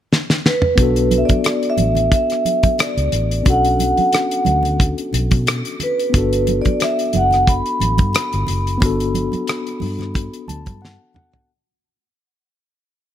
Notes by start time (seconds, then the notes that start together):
0.13 snare
0.30 snare
0.46 B4, snare
0.62 mid tom
0.75 B1 B3 D4, kick, closed hi-hat, low conga
0.81 F#4 A4
0.96 closed hi-hat
1.11 closed hi-hat, muted conga, high conga
1.18 E5
1.25 D5, closed hi-hat, high conga
1.30 muted fingered electric bass stroke, kick
1.44 cross-stick, closed hi-hat, muted conga
1.63 closed hi-hat
1.70 E5
1.78 A1, closed hi-hat, muted conga, high conga
1.95 closed hi-hat, low conga
2.12 E5, kick, closed hi-hat, muted conga
2.30 cross-stick, closed hi-hat
2.45 closed hi-hat, muted conga, high conga
2.63 kick, closed hi-hat, high conga
2.78 D5, cross-stick, closed hi-hat, muted conga
2.97 C#2, closed hi-hat
3.12 A1, closed hi-hat, muted conga, low conga
3.31 closed hi-hat
3.43 B1 C#4 D4, kick, closed hi-hat, muted conga, low conga
3.48 F#4 A4 F#5
3.65 closed hi-hat
3.79 closed hi-hat, muted conga, high conga
3.97 muted fingered electric bass stroke, closed hi-hat, high conga
4.13 cross-stick, closed hi-hat, muted conga
4.31 closed hi-hat
4.45 D2, closed hi-hat, muted conga, high conga
4.63 closed hi-hat, low conga
4.80 kick, closed hi-hat, muted conga
4.98 closed hi-hat
5.13 B1, closed hi-hat, muted conga, high conga
5.31 B2, kick, closed hi-hat, high conga
5.46 cross-stick, closed hi-hat, muted conga
5.65 closed hi-hat
5.80 B4, closed hi-hat, muted conga, low conga
5.99 closed hi-hat
6.10 B3 D4, low conga
6.14 G1 F#4 A4, kick, closed hi-hat
6.33 closed hi-hat
6.47 closed hi-hat, muted conga, high conga
6.62 D5, closed hi-hat, high conga
6.66 muted fingered electric bass stroke, kick
6.80 E5, cross-stick, closed hi-hat, muted conga
6.99 closed hi-hat
7.13 F#1 F#5, closed hi-hat, high conga
7.31 cross-stick, closed hi-hat, low conga
7.47 B5, kick, closed hi-hat, muted conga
7.66 closed hi-hat
7.80 A1, closed hi-hat, muted conga, high conga
7.98 G2, kick, closed hi-hat, high conga
8.13 cross-stick, closed hi-hat, muted conga
8.33 G1, closed hi-hat
8.47 F#1, closed hi-hat, muted conga, low conga
8.67 closed hi-hat
8.78 B3 D4, low conga
8.82 G1 F#4 A4, kick, closed hi-hat
9.00 closed hi-hat
9.15 closed hi-hat, muted conga, high conga
9.32 muted fingered electric bass stroke, closed hi-hat, high conga
9.47 cross-stick, closed hi-hat
9.67 closed hi-hat
9.80 G2, open hi-hat, muted conga, high conga
9.99 cross-stick, closed hi-hat, low conga
10.14 kick, closed hi-hat, muted conga
10.33 closed hi-hat
10.48 D2 A5, closed hi-hat, muted conga, high conga
10.66 G2, kick, closed hi-hat, high conga
10.81 F#5, muted conga
10.85 snare
11.14 F#5, mid tom, muted conga, low conga
11.33 floor tom